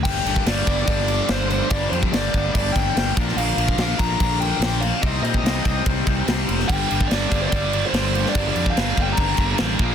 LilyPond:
<<
  \new Staff \with { instrumentName = "Lead electric guitar" } { \time 4/4 \key g \minor \tempo 4 = 145 g''4 d''4 d''4 c''8 c''8 | d''8 c''8 d''4 d''8 g''4 r8 | f''4 f''8 bes''4 g''4 f''8 | ees''8 ees''4. r2 |
g''4 \tuplet 3/2 { d''4~ d''16 c''16 } d''4 c''8 c''8 | d''8 d''8 f''8. g''16 bes''4 r4 | }
  \new Staff \with { instrumentName = "Distorted electric guitar" } { \clef bass \time 4/4 \key g \minor <g, d g bes d'>4. <g, d g bes d'>2~ <g, d g bes d'>8 | <g, d g bes d'>4. <g, d g bes d'>2 <bes, d f bes d'>8~ | <bes, d f bes d'>4 <bes, d f bes d'>2~ <bes, d f bes d'>8 r8 | <c g c' ees'>4. <c g c' ees'>2~ <c g c' ees'>8 |
<g, d g bes d'>4. <g, d g bes d'>2~ <g, d g bes d'>8 | <g, d g bes d'>4. <g, d g bes d'>2 <bes, d f bes d'>8 | }
  \new Staff \with { instrumentName = "Distorted electric guitar" } { \clef bass \time 4/4 \key g \minor r1 | r1 | r1 | r1 |
<g, d g>8 <g, d g>8 <g, d g>8 <g, d g>8 <g, d g>8 <g, d g>8 <g, d g>8 <g, d g>8 | <g, d g>8 <g, d g>8 <g, d g>8 <g, d g>8 <g, d g>8 <g, d g>8 <g, d g>8 <bes, f bes>8 | }
  \new Staff \with { instrumentName = "Overdriven electric guitar" } { \clef bass \time 4/4 \key g \minor <g, d g>8 <g, d g>8 <g, d g>8 <g, d g>8 <g, d g>8 <g, d g>8 <g, d g>8 <g, d g>8 | <g, d g>8 <g, d g>8 <g, d g>8 <g, d g>8 <g, d g>8 <g, d g>8 <g, d g>8 <bes, f bes>8 | <bes, f bes>8 <bes, f bes>8 <bes, f bes>8 <bes, f bes>8 <bes, f bes>8 <bes, f bes>8 <bes, f bes>8 <bes, f bes>8 | <c g c'>8 <c g c'>8 <c g c'>8 <c g c'>8 <c g c'>8 <c g c'>8 <c g c'>8 <c g c'>8 |
<g, d g>8 <g, d g>8 <g, d g>8 <g, d g>8 <g, d g>8 <g, d g>8 <g, d g>8 <g, d g>8 | <g, d g>8 <g, d g>8 <g, d g>8 <g, d g>8 <g, d g>8 <g, d g>8 <g, d g>8 <bes, f bes>8 | }
  \new Staff \with { instrumentName = "Fingered electric bass" } { \clef bass \time 4/4 \key g \minor g,,8 g,,8 g,,8 g,,8 g,,4 g,,4 | g,,8 f,8 g,,8 g,,8 g,,8 g,,8 g,,8 bes,,8 | bes,,8 bes,,8 bes,,8 bes,,8 bes,,4 bes,,4 | c,8 bes,8 c,8 c,8 c,8 c,8 c,8 f,,8 |
g,,8 g,,8 g,,8 g,,8 g,,4 g,,4 | g,,8 f,8 g,,8 g,,8 g,,8 g,,8 a,,8 bes,,8 | }
  \new DrumStaff \with { instrumentName = "Drums" } \drummode { \time 4/4 <cymc bd>8 cymc16 bd16 <cymc sn>8 <cymc bd>8 <cymc bd>8 cymc8 <cymc sn>8 cymc8 | <cymc bd>8 cymc16 bd16 <cymc sn>8 bd8 <cymc bd>8 <cymc bd>8 <cymc sn>8 <cymc bd>16 sn16 | cymc8 cymc16 bd16 <cymc sn>8 <cymc bd>8 <cymc bd>8 cymc8 <cymc sn>8 cymc8 | <cymc bd>8 cymc16 bd16 <cymc sn>8 <cymc bd>8 <cymc bd>8 <cymc bd>8 <cymc sn>8 cymc16 sn16 |
<cymc bd>8 cymc16 bd16 <cymc sn>8 <cymc bd>8 <cymc bd>8 cymc8 <cymc sn>8 cymc16 sn16 | <cymc bd>8 cymc16 bd16 <cymc sn>8 <cymc bd>8 <cymc bd>8 <cymc bd>8 <cymc sn>8 <cymc bd>8 | }
>>